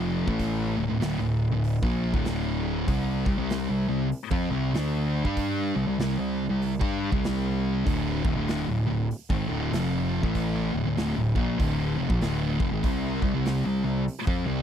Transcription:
Already playing: F1 F2 C3 F3
0.27 A1 A2 E3 A3, kick
0.39 kick, open hi-hat
0.77 D1 D2 A2
0.89 D1 D2 A2
1.01 D1 D2 A2, snare, open hi-hat
1.20 D1 D2 A2
1.50 D1 D2 A2
1.64 open hi-hat
1.82 A#1 A#2 F3 A#3, kick
2.14 D1 D2 A2 D3, kick
2.25 snare, open hi-hat
2.87 C2 C3 G3 C4, kick, open hi-hat
3.26 C2 C3 G3, kick
3.38 C2 C3 G3 C4
3.50 snare, open hi-hat
3.70 C2 C3 G3
3.89 C2 C3 G3
4.12 open hi-hat
4.31 F2 F3 C4, kick
4.50 C2 C3 G3 C4
4.74 D2 D3 A3 D4, snare, open hi-hat
5.25 G2 G3 D4 G4, kick
5.37 kick, open hi-hat
5.75 C2 C3 G3
5.87 C2 C3 G3
5.99 C2 C3 G3, snare, open hi-hat
6.18 C2 C3 G3
6.49 C2 C3 G3
6.62 open hi-hat
6.80 G2 G3 D4 G4, kick
7.11 C2 C3 G3 C4, kick
7.24 snare, open hi-hat
7.86 D1 D2 A2 D3, kick, open hi-hat
8.24 D#1 D#2 A#2, kick
8.36 D1 D2 A2 D3
8.48 snare, open hi-hat
8.67 D1 D2 A2
8.87 D1 D2 A2
9.11 open hi-hat
9.30 G#1 G#2 D#3, kick
9.48 D1 D2 A2 D3
9.72 F1 F2 C3 F3, snare, open hi-hat
10.23 A1 A2 E3 A3, kick
10.35 kick, open hi-hat
10.73 D1 D2 A2
10.85 D1 D2 A2
10.97 D1 D2 A2, snare, open hi-hat
11.16 D1 D2 A2
11.35 A#1 A#2 F3 A#3, kick
11.58 D1 D2 A2 D3, kick, open hi-hat
11.97 F1 F2 C3
12.09 A#1 A#2 F3, kick
12.21 D1 D2 A2 D3, snare, open hi-hat
12.59 F1 F2 C3, kick
12.71 G#1 G#2 D#3
12.83 C2 C3 G3 C4, kick, open hi-hat
13.22 C2 C3 G3, kick
13.34 C2 C3 G3 C4
13.45 snare, open hi-hat
13.65 C2 C3 G3
13.84 C2 C3 G3
14.08 open hi-hat
14.27 F2 F3 C4, kick
14.46 C2 C3 G3 C4

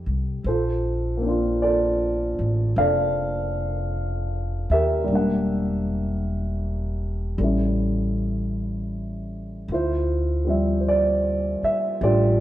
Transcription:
Already playing: A3 C4 D#4 G4
0.06 C2
0.44 A#1 A4 C5
0.48 F4
1.17 A#3
1.22 C4 D4
1.28 F4
1.62 F4 A4 D5
2.39 A1
2.76 F1 C4 D4 A4 D5 F5
4.70 D#2 G4 A#4 E5
5.04 E1 G3 A#3
5.12 D4 F#5
7.38 A1 G3 A3 C#4
7.43 E4
9.68 D2 F4
9.73 E4 C5
10.45 F3 G3 C4
10.50 E5
10.81 C5
10.88 D5
11.63 E5, muted upright bass stroke
12.01 A1 G3 A3 D4 F4 G4 D5

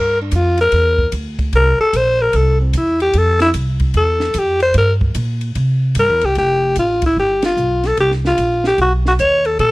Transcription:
Already playing: G2 A#4
0.21 D4
0.31 F2 F4, kick, hi-hat pedal, ride
0.57 A#4, ride
0.72 E2, kick, ride
0.98 kick
1.12 D2, kick, hi-hat pedal, ride
1.39 kick, ride
1.53 C2 A#4, kick, ride
1.79 A4, muted upright bass stroke
1.93 A#1 C5, kick, hi-hat pedal, ride
2.22 A#4
2.33 C2 A4, kick, ride
2.61 C4
2.73 E2 E4, kick, hi-hat pedal, ride
3.00 G4, ride
3.13 F2, kick, ride
3.18 A4
3.40 E4, snare, ride
3.54 C2, kick, hi-hat pedal, ride
3.80 kick, ride
3.94 E2 A4, kick, ride
4.20 snare
4.34 F2, kick, hi-hat pedal, ride
4.39 G4
4.60 C5, ride
4.74 G2 A#4, kick, ride
5.01 kick
5.15 A#2, kick, hi-hat pedal, ride
5.41 ride
5.55 C3, kick, ride
5.95 G2, kick, hi-hat pedal, ride
5.99 A#4
6.09 E2
6.21 C2, ride
6.25 G4
6.35 F1 G4, kick, ride
6.76 A1 F4, kick, hi-hat pedal, ride
7.02 kick, ride
7.06 E4
7.17 G1 G4, kick
7.42 F4, snare, ride
7.57 B1, hi-hat pedal
7.83 A4, snare, ride
7.97 C2 G4, kick, ride
8.11 snare
8.25 F4, snare
8.38 A#1, kick, hi-hat pedal, ride
8.64 G4, snare
8.78 B1 F#4, kick, ride
9.05 F#4, snare
9.19 D#2 C#5, kick, hi-hat pedal, ride
9.45 A4, ride
9.59 A#2 A4, kick, ride

